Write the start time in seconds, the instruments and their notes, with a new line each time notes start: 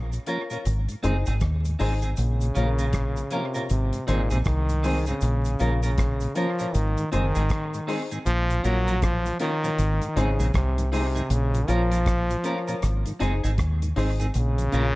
Already playing: fingered electric bass A#1
0.12 tonewheel organ A#2, closed hi-hat, cabasa
0.26 tonewheel organ F3 A#3 C#4, clean electric guitar C#4 F4 A#4, upright piano F4 A#4 C#5, closed hi-hat, cabasa
0.50 tonewheel organ A#2, clean electric guitar C#4 F4 A#4, upright piano F4 A#4 C#5, closed hi-hat, cabasa
0.65 fingered electric bass G#1, closed hi-hat, cabasa
0.89 tonewheel organ G#2, closed hi-hat, cabasa
1.03 fingered electric bass F#1, tonewheel organ D#3 G#3 C4, clean electric guitar C4 D#4 G#4, upright piano D#4 G#4 C5, closed hi-hat, cabasa
1.26 fingered electric bass G#1, tonewheel organ G#2, clean electric guitar C4 D#4 G#4, closed hi-hat, cabasa
1.40 fingered electric bass D#2, kick, cross-stick, closed hi-hat, cabasa
1.65 tonewheel organ G#2, closed hi-hat, cabasa
1.79 fingered electric bass G#1, tonewheel organ D#3 G#3 C4, clean electric guitar C4 D#4 G#4, upright piano D#4 G#4 C5, open hi-hat, cabasa
2.02 tonewheel organ G#2, clean electric guitar C4 D#4 G#4, closed hi-hat, cabasa
2.17 fingered electric bass A#1, trombone C#3, closed hi-hat, cabasa
2.41 tonewheel organ A#2, closed hi-hat, cabasa
2.55 fingered electric bass A#1, tonewheel organ F3 A#3 C#4, clean electric guitar C#4 F4 A#4, upright piano F4 A#4 C#5, closed hi-hat, cabasa
2.79 tonewheel organ A#2, clean electric guitar C#4 F4 A#4, closed hi-hat, cabasa
2.93 kick, cross-stick, closed hi-hat, cabasa
3.16 tonewheel organ A#2, closed hi-hat, cabasa
3.30 trombone C3, tonewheel organ F3 A#3 C#4, clean electric guitar C#4 F4 A#4, upright piano F4 A#4 C#5, closed hi-hat, cabasa
3.54 tonewheel organ A#2, clean electric guitar C#4 F4 A#4, upright piano F4 A#4 C#5, closed hi-hat, cabasa
3.70 fingered electric bass G#1, trombone C3, closed hi-hat, cabasa
3.93 tonewheel organ G#2, closed hi-hat, cabasa
4.07 fingered electric bass G#1, trombone A#2, tonewheel organ D#3 G#3 C4, clean electric guitar C4 D#4 G#4, upright piano D#4 G#4 C5, closed hi-hat, cabasa
4.30 fingered electric bass A#1, tonewheel organ G#2, trombone C3, clean electric guitar C4 D#4 G#4, closed hi-hat, cabasa
4.45 fingered electric bass C2, trombone D#3, kick, cross-stick, closed hi-hat, cabasa
4.69 tonewheel organ G#2, closed hi-hat, cabasa
4.83 tonewheel organ D#3 G#3 C4, clean electric guitar C4 D#4 G#4, upright piano D#4 G#4 C5, open hi-hat, cabasa
5.06 tonewheel organ G#2, trombone C#3, clean electric guitar C4 D#4 G#4, closed hi-hat, cabasa
5.21 fingered electric bass A#1, closed hi-hat, cabasa
5.45 tonewheel organ A#2, closed hi-hat, cabasa
5.59 fingered electric bass A#1, tonewheel organ F3 A#3 C#4, clean electric guitar C#4 F4 A#4, upright piano F4 A#4 C#5, closed hi-hat, cabasa
5.83 tonewheel organ A#2, trombone C#3, clean electric guitar C#4 F4 A#4, closed hi-hat, cabasa
5.98 kick, cross-stick, closed hi-hat, cabasa
6.20 tonewheel organ A#2, closed hi-hat, cabasa
6.35 trombone F3, tonewheel organ F3 A#3 C#4, clean electric guitar C#4 F4 A#4, upright piano F4 A#4 C#5, closed hi-hat, cabasa
6.59 tonewheel organ A#2, clean electric guitar C#4 F4 A#4, upright piano F4 A#4 C#5, closed hi-hat, cabasa
6.74 fingered electric bass G#1, trombone D#3, closed hi-hat, cabasa
6.98 tonewheel organ G#2 D#3, closed hi-hat, cabasa
7.12 fingered electric bass F#1, trombone D#3, tonewheel organ G#3 C4 D#4, clean electric guitar C4 D#4 G#4, upright piano D#4 G#4 C5, closed hi-hat, cabasa
7.35 fingered electric bass G#1, tonewheel organ G#2 D#3, clean electric guitar C4 D#4 G#4, closed hi-hat, cabasa
7.49 kick, cross-stick, closed hi-hat, cabasa
7.74 tonewheel organ G#2 D#3, closed hi-hat, cabasa
7.87 tonewheel organ G#3 C4 D#4, clean electric guitar C4 D#4 G#4, upright piano D#4 G#4 C5, open hi-hat, cabasa
8.11 tonewheel organ G#2 D#3, clean electric guitar C4 D#4 G#4, closed hi-hat, cabasa
8.26 fingered electric bass A#1, trombone F3, closed hi-hat, cabasa
8.50 tonewheel organ A#2 F3, closed hi-hat, cabasa
8.63 fingered electric bass A#1, trombone F#3, tonewheel organ A#3 C#4 F4, clean electric guitar C#4 F4 A#4, upright piano F4 A#4 C#5, closed hi-hat, cabasa
8.87 tonewheel organ A#2 F3, clean electric guitar C#4 F4 A#4, closed hi-hat, cabasa
9.02 trombone F3, kick, cross-stick, closed hi-hat, cabasa
9.26 tonewheel organ A#2 F3, closed hi-hat, cabasa
9.39 trombone D#3, tonewheel organ A#3 C#4 F4, clean electric guitar C#4 F4 A#4, upright piano F4 A#4 C#5, closed hi-hat, cabasa
9.63 tonewheel organ A#2 F3, clean electric guitar C#4 F4 A#4, upright piano F4 A#4 C#5, closed hi-hat, cabasa
9.78 fingered electric bass G#1, closed hi-hat, cabasa
10.01 tonewheel organ G#2 D#3, closed hi-hat, cabasa
10.16 fingered electric bass G#1, trombone C#3, tonewheel organ G#3 C4 D#4, clean electric guitar C4 D#4 G#4, upright piano D#4 G#4 C5, closed hi-hat, cabasa
10.39 fingered electric bass A#1, tonewheel organ G#2 D#3, clean electric guitar C4 D#4 G#4, closed hi-hat, cabasa
10.54 fingered electric bass C2, trombone C3, kick, cross-stick, closed hi-hat, cabasa
10.77 tonewheel organ G#2 D#3, closed hi-hat, cabasa
10.91 trombone C3, tonewheel organ G#3 C4 D#4, clean electric guitar C4 D#4 G#4, upright piano D#4 G#4 C5, open hi-hat, cabasa
11.15 tonewheel organ G#2 D#3, clean electric guitar C4 D#4 G#4, closed hi-hat, cabasa
11.30 fingered electric bass A#1, trombone C#3, closed hi-hat, cabasa
11.54 tonewheel organ A#2 F3, closed hi-hat, cabasa
11.68 fingered electric bass A#1, trombone F3, tonewheel organ A#3 C#4 F4, clean electric guitar C#4 F4 A#4, upright piano F4 A#4 C#5, closed hi-hat, cabasa
11.91 tonewheel organ A#2 F3, clean electric guitar C#4 F4 A#4, closed hi-hat, cabasa
12.06 kick, cross-stick, closed hi-hat, cabasa
12.30 tonewheel organ A#2 F3, closed hi-hat, cabasa
12.44 tonewheel organ A#3 C#4 F4, clean electric guitar C#4 F4 A#4, upright piano F4 A#4 C#5, closed hi-hat, cabasa
12.67 tonewheel organ A#2 F3, clean electric guitar C#4 F4 A#4, upright piano F4 A#4 C#5, closed hi-hat, cabasa
12.82 fingered electric bass G#1, cross-stick, closed hi-hat, cabasa
13.06 tonewheel organ G#2 D#3, closed hi-hat, cabasa
13.19 fingered electric bass F#1, tonewheel organ G#3 C4 D#4, clean electric guitar C4 D#4 G#4, upright piano D#4 G#4 C5, closed hi-hat, cabasa
13.44 fingered electric bass G#1, tonewheel organ G#2 D#3, clean electric guitar C4 D#4 G#4, closed hi-hat, cabasa
13.58 fingered electric bass D#2, kick, cross-stick, closed hi-hat, cabasa
13.82 tonewheel organ G#2 D#3, closed hi-hat, cabasa
13.96 fingered electric bass G#1, tonewheel organ G#3 C4 D#4, clean electric guitar C4 D#4 G#4, upright piano D#4 G#4 C5, open hi-hat, cabasa
14.20 tonewheel organ G#2 D#3, clean electric guitar C4 D#4 G#4, closed hi-hat, cabasa
14.34 fingered electric bass A#1, trombone C#3, closed hi-hat, cabasa
14.58 tonewheel organ A#2 F3, closed hi-hat, cabasa
14.72 fingered electric bass A#1, tonewheel organ A#3 C#4 F4, clean electric guitar C#4 F4 A#4, upright piano F4 A#4 C#5, closed hi-hat, cabasa